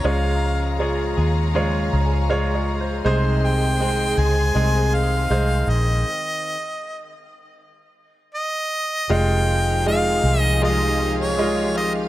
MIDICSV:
0, 0, Header, 1, 6, 480
1, 0, Start_track
1, 0, Key_signature, -4, "minor"
1, 0, Tempo, 750939
1, 29, Time_signature, 4, 2, 24, 8
1, 4349, Tempo, 761421
1, 7678, End_track
2, 0, Start_track
2, 0, Title_t, "Harmonica"
2, 0, Program_c, 0, 22
2, 40, Note_on_c, 0, 77, 74
2, 517, Note_off_c, 0, 77, 0
2, 2203, Note_on_c, 0, 79, 88
2, 2679, Note_on_c, 0, 80, 105
2, 2688, Note_off_c, 0, 79, 0
2, 3160, Note_on_c, 0, 77, 96
2, 3170, Note_off_c, 0, 80, 0
2, 3638, Note_on_c, 0, 75, 82
2, 3648, Note_off_c, 0, 77, 0
2, 4593, Note_off_c, 0, 75, 0
2, 5321, Note_on_c, 0, 75, 94
2, 5806, Note_on_c, 0, 79, 108
2, 5815, Note_off_c, 0, 75, 0
2, 6280, Note_off_c, 0, 79, 0
2, 6289, Note_on_c, 0, 77, 107
2, 6616, Note_off_c, 0, 77, 0
2, 6616, Note_on_c, 0, 75, 107
2, 6736, Note_off_c, 0, 75, 0
2, 6766, Note_on_c, 0, 75, 99
2, 7093, Note_off_c, 0, 75, 0
2, 7125, Note_on_c, 0, 73, 89
2, 7452, Note_off_c, 0, 73, 0
2, 7482, Note_on_c, 0, 75, 80
2, 7582, Note_off_c, 0, 75, 0
2, 7678, End_track
3, 0, Start_track
3, 0, Title_t, "String section"
3, 0, Program_c, 1, 48
3, 0, Note_on_c, 1, 82, 69
3, 29, Note_on_c, 1, 77, 58
3, 30, Note_on_c, 1, 68, 65
3, 31, Note_on_c, 1, 73, 61
3, 1929, Note_off_c, 1, 82, 0
3, 1936, Note_off_c, 1, 68, 0
3, 1936, Note_off_c, 1, 77, 0
3, 1937, Note_off_c, 1, 73, 0
3, 1954, Note_on_c, 1, 72, 65
3, 1955, Note_on_c, 1, 68, 69
3, 1955, Note_on_c, 1, 75, 66
3, 1955, Note_on_c, 1, 84, 81
3, 3850, Note_off_c, 1, 72, 0
3, 3851, Note_off_c, 1, 68, 0
3, 3851, Note_off_c, 1, 75, 0
3, 3851, Note_off_c, 1, 84, 0
3, 5798, Note_on_c, 1, 63, 66
3, 5799, Note_on_c, 1, 67, 69
3, 5799, Note_on_c, 1, 68, 66
3, 5801, Note_on_c, 1, 53, 73
3, 5801, Note_on_c, 1, 77, 84
3, 7678, Note_off_c, 1, 53, 0
3, 7678, Note_off_c, 1, 63, 0
3, 7678, Note_off_c, 1, 67, 0
3, 7678, Note_off_c, 1, 68, 0
3, 7678, Note_off_c, 1, 77, 0
3, 7678, End_track
4, 0, Start_track
4, 0, Title_t, "Grand piano"
4, 0, Program_c, 2, 0
4, 0, Control_c, 2, 64, 127
4, 26, Note_on_c, 2, 56, 83
4, 29, Note_on_c, 2, 65, 73
4, 30, Note_on_c, 2, 49, 54
4, 33, Note_on_c, 2, 73, 88
4, 38, Control_c, 2, 64, 0
4, 152, Control_c, 2, 64, 127
4, 486, Note_off_c, 2, 56, 0
4, 488, Note_off_c, 2, 65, 0
4, 490, Note_off_c, 2, 73, 0
4, 503, Note_on_c, 2, 56, 58
4, 508, Note_on_c, 2, 65, 55
4, 511, Note_on_c, 2, 73, 67
4, 728, Note_off_c, 2, 49, 0
4, 965, Note_off_c, 2, 56, 0
4, 968, Note_off_c, 2, 65, 0
4, 969, Note_off_c, 2, 73, 0
4, 991, Note_on_c, 2, 56, 80
4, 995, Note_on_c, 2, 65, 71
4, 998, Note_on_c, 2, 73, 82
4, 1231, Note_on_c, 2, 82, 63
4, 1307, Note_off_c, 2, 82, 0
4, 1314, Note_on_c, 2, 80, 61
4, 1449, Note_off_c, 2, 56, 0
4, 1451, Note_off_c, 2, 65, 0
4, 1453, Note_off_c, 2, 73, 0
4, 1463, Note_off_c, 2, 80, 0
4, 1466, Note_on_c, 2, 56, 87
4, 1469, Note_on_c, 2, 77, 72
4, 1471, Note_on_c, 2, 65, 79
4, 1473, Note_on_c, 2, 73, 96
4, 1621, Note_off_c, 2, 77, 0
4, 1623, Note_off_c, 2, 73, 0
4, 1633, Note_on_c, 2, 73, 67
4, 1783, Note_off_c, 2, 73, 0
4, 1794, Note_on_c, 2, 72, 62
4, 1927, Note_off_c, 2, 56, 0
4, 1929, Note_off_c, 2, 65, 0
4, 1943, Note_off_c, 2, 72, 0
4, 1947, Note_on_c, 2, 56, 102
4, 1951, Note_on_c, 2, 63, 86
4, 1953, Note_on_c, 2, 48, 68
4, 1954, Note_on_c, 2, 72, 111
4, 1964, Control_c, 2, 64, 0
4, 2065, Control_c, 2, 64, 127
4, 2406, Note_off_c, 2, 56, 0
4, 2409, Note_off_c, 2, 63, 0
4, 2410, Note_off_c, 2, 72, 0
4, 2428, Note_on_c, 2, 56, 63
4, 2430, Note_on_c, 2, 63, 59
4, 2433, Note_on_c, 2, 72, 70
4, 2646, Note_off_c, 2, 48, 0
4, 2886, Note_off_c, 2, 56, 0
4, 2887, Note_off_c, 2, 63, 0
4, 2888, Note_off_c, 2, 72, 0
4, 2906, Note_on_c, 2, 56, 65
4, 2909, Note_on_c, 2, 63, 62
4, 2913, Note_on_c, 2, 68, 73
4, 3364, Note_off_c, 2, 56, 0
4, 3366, Note_off_c, 2, 63, 0
4, 3367, Note_off_c, 2, 68, 0
4, 3389, Note_on_c, 2, 56, 76
4, 3391, Note_on_c, 2, 63, 71
4, 3395, Note_on_c, 2, 72, 85
4, 3845, Note_off_c, 2, 56, 0
4, 3846, Note_off_c, 2, 63, 0
4, 3848, Note_off_c, 2, 72, 0
4, 3879, Control_c, 2, 64, 0
4, 5795, Note_on_c, 2, 56, 85
4, 5799, Note_on_c, 2, 65, 85
4, 5803, Note_on_c, 2, 75, 96
4, 5900, Control_c, 2, 64, 127
4, 6251, Note_off_c, 2, 56, 0
4, 6253, Note_off_c, 2, 65, 0
4, 6255, Note_off_c, 2, 75, 0
4, 6274, Note_on_c, 2, 56, 70
4, 6278, Note_on_c, 2, 65, 63
4, 6280, Note_on_c, 2, 75, 78
4, 6730, Note_off_c, 2, 56, 0
4, 6732, Note_off_c, 2, 65, 0
4, 6733, Note_off_c, 2, 75, 0
4, 6754, Note_on_c, 2, 56, 65
4, 6759, Note_on_c, 2, 65, 67
4, 6761, Note_on_c, 2, 75, 72
4, 7207, Note_off_c, 2, 56, 0
4, 7210, Note_off_c, 2, 65, 0
4, 7211, Note_off_c, 2, 75, 0
4, 7235, Note_on_c, 2, 56, 76
4, 7238, Note_on_c, 2, 65, 70
4, 7242, Note_on_c, 2, 75, 85
4, 7678, Note_off_c, 2, 56, 0
4, 7678, Note_off_c, 2, 65, 0
4, 7678, Note_off_c, 2, 75, 0
4, 7678, End_track
5, 0, Start_track
5, 0, Title_t, "Clean electric guitar"
5, 0, Program_c, 3, 27
5, 26, Note_on_c, 3, 49, 67
5, 29, Note_on_c, 3, 53, 65
5, 32, Note_on_c, 3, 56, 65
5, 34, Note_on_c, 3, 65, 69
5, 35, Note_on_c, 3, 68, 67
5, 498, Note_off_c, 3, 53, 0
5, 506, Note_on_c, 3, 53, 53
5, 509, Note_off_c, 3, 56, 0
5, 509, Note_off_c, 3, 65, 0
5, 510, Note_off_c, 3, 49, 0
5, 512, Note_on_c, 3, 56, 58
5, 517, Note_off_c, 3, 68, 0
5, 517, Note_on_c, 3, 65, 53
5, 520, Note_on_c, 3, 68, 60
5, 739, Note_off_c, 3, 68, 0
5, 746, Note_off_c, 3, 65, 0
5, 747, Note_on_c, 3, 68, 58
5, 750, Note_off_c, 3, 53, 0
5, 753, Note_off_c, 3, 56, 0
5, 754, Note_on_c, 3, 65, 51
5, 760, Note_on_c, 3, 56, 43
5, 985, Note_off_c, 3, 56, 0
5, 986, Note_off_c, 3, 65, 0
5, 987, Note_on_c, 3, 49, 76
5, 989, Note_off_c, 3, 68, 0
5, 990, Note_on_c, 3, 53, 74
5, 992, Note_on_c, 3, 56, 82
5, 994, Note_on_c, 3, 65, 86
5, 997, Note_on_c, 3, 68, 84
5, 1462, Note_off_c, 3, 53, 0
5, 1470, Note_on_c, 3, 53, 56
5, 1471, Note_off_c, 3, 49, 0
5, 1471, Note_off_c, 3, 65, 0
5, 1473, Note_off_c, 3, 56, 0
5, 1476, Note_on_c, 3, 56, 62
5, 1479, Note_on_c, 3, 65, 64
5, 1481, Note_off_c, 3, 68, 0
5, 1484, Note_on_c, 3, 68, 65
5, 1952, Note_on_c, 3, 48, 78
5, 1953, Note_off_c, 3, 53, 0
5, 1955, Note_off_c, 3, 56, 0
5, 1956, Note_on_c, 3, 51, 81
5, 1957, Note_off_c, 3, 65, 0
5, 1958, Note_on_c, 3, 56, 85
5, 1959, Note_off_c, 3, 68, 0
5, 1960, Note_on_c, 3, 60, 86
5, 1961, Note_on_c, 3, 68, 94
5, 2426, Note_off_c, 3, 51, 0
5, 2427, Note_off_c, 3, 56, 0
5, 2428, Note_on_c, 3, 51, 57
5, 2433, Note_off_c, 3, 48, 0
5, 2435, Note_off_c, 3, 68, 0
5, 2435, Note_on_c, 3, 56, 58
5, 2436, Note_off_c, 3, 60, 0
5, 2439, Note_on_c, 3, 60, 68
5, 2442, Note_on_c, 3, 68, 63
5, 2662, Note_off_c, 3, 68, 0
5, 2669, Note_off_c, 3, 60, 0
5, 2670, Note_off_c, 3, 51, 0
5, 2670, Note_on_c, 3, 68, 52
5, 2673, Note_off_c, 3, 56, 0
5, 2677, Note_on_c, 3, 60, 46
5, 2683, Note_on_c, 3, 56, 43
5, 2907, Note_off_c, 3, 56, 0
5, 2909, Note_off_c, 3, 60, 0
5, 2910, Note_on_c, 3, 48, 74
5, 2911, Note_off_c, 3, 68, 0
5, 2913, Note_on_c, 3, 51, 73
5, 2915, Note_on_c, 3, 56, 76
5, 2917, Note_on_c, 3, 60, 79
5, 2919, Note_on_c, 3, 68, 83
5, 3386, Note_off_c, 3, 56, 0
5, 3387, Note_off_c, 3, 51, 0
5, 3389, Note_on_c, 3, 51, 51
5, 3390, Note_off_c, 3, 48, 0
5, 3394, Note_off_c, 3, 68, 0
5, 3394, Note_on_c, 3, 56, 60
5, 3396, Note_off_c, 3, 60, 0
5, 3399, Note_on_c, 3, 60, 63
5, 3402, Note_on_c, 3, 68, 60
5, 3871, Note_off_c, 3, 56, 0
5, 3875, Note_off_c, 3, 68, 0
5, 4195, Note_off_c, 3, 51, 0
5, 4195, Note_off_c, 3, 60, 0
5, 5794, Note_on_c, 3, 41, 70
5, 5796, Note_on_c, 3, 48, 81
5, 5798, Note_on_c, 3, 51, 79
5, 5800, Note_on_c, 3, 56, 79
5, 5801, Note_on_c, 3, 60, 82
5, 5803, Note_on_c, 3, 65, 84
5, 6269, Note_off_c, 3, 51, 0
5, 6269, Note_off_c, 3, 56, 0
5, 6271, Note_on_c, 3, 51, 60
5, 6273, Note_off_c, 3, 60, 0
5, 6274, Note_off_c, 3, 41, 0
5, 6275, Note_off_c, 3, 48, 0
5, 6276, Note_on_c, 3, 56, 62
5, 6281, Note_on_c, 3, 60, 59
5, 6283, Note_off_c, 3, 65, 0
5, 6285, Note_on_c, 3, 65, 65
5, 6750, Note_off_c, 3, 56, 0
5, 6751, Note_on_c, 3, 41, 71
5, 6752, Note_off_c, 3, 51, 0
5, 6752, Note_off_c, 3, 60, 0
5, 6754, Note_on_c, 3, 48, 79
5, 6755, Note_on_c, 3, 51, 79
5, 6757, Note_on_c, 3, 56, 88
5, 6759, Note_off_c, 3, 65, 0
5, 6759, Note_on_c, 3, 60, 80
5, 6761, Note_on_c, 3, 65, 84
5, 7225, Note_off_c, 3, 51, 0
5, 7226, Note_off_c, 3, 56, 0
5, 7227, Note_on_c, 3, 51, 55
5, 7230, Note_off_c, 3, 41, 0
5, 7231, Note_off_c, 3, 48, 0
5, 7233, Note_on_c, 3, 56, 63
5, 7234, Note_off_c, 3, 60, 0
5, 7238, Note_off_c, 3, 65, 0
5, 7241, Note_on_c, 3, 65, 70
5, 7457, Note_off_c, 3, 65, 0
5, 7465, Note_on_c, 3, 65, 53
5, 7467, Note_off_c, 3, 56, 0
5, 7468, Note_off_c, 3, 51, 0
5, 7469, Note_on_c, 3, 60, 45
5, 7475, Note_on_c, 3, 56, 47
5, 7478, Note_on_c, 3, 51, 45
5, 7678, Note_off_c, 3, 51, 0
5, 7678, Note_off_c, 3, 56, 0
5, 7678, Note_off_c, 3, 60, 0
5, 7678, Note_off_c, 3, 65, 0
5, 7678, End_track
6, 0, Start_track
6, 0, Title_t, "Fingered electric bass"
6, 0, Program_c, 4, 33
6, 29, Note_on_c, 4, 37, 89
6, 727, Note_off_c, 4, 37, 0
6, 751, Note_on_c, 4, 39, 80
6, 1208, Note_off_c, 4, 39, 0
6, 1234, Note_on_c, 4, 37, 82
6, 1929, Note_off_c, 4, 37, 0
6, 1952, Note_on_c, 4, 36, 88
6, 2646, Note_off_c, 4, 36, 0
6, 2670, Note_on_c, 4, 37, 82
6, 2894, Note_off_c, 4, 37, 0
6, 2911, Note_on_c, 4, 36, 94
6, 3365, Note_off_c, 4, 36, 0
6, 3391, Note_on_c, 4, 36, 80
6, 3614, Note_off_c, 4, 36, 0
6, 3627, Note_on_c, 4, 34, 94
6, 3851, Note_off_c, 4, 34, 0
6, 5796, Note_on_c, 4, 29, 94
6, 6490, Note_off_c, 4, 29, 0
6, 6513, Note_on_c, 4, 36, 81
6, 7678, Note_off_c, 4, 36, 0
6, 7678, End_track
0, 0, End_of_file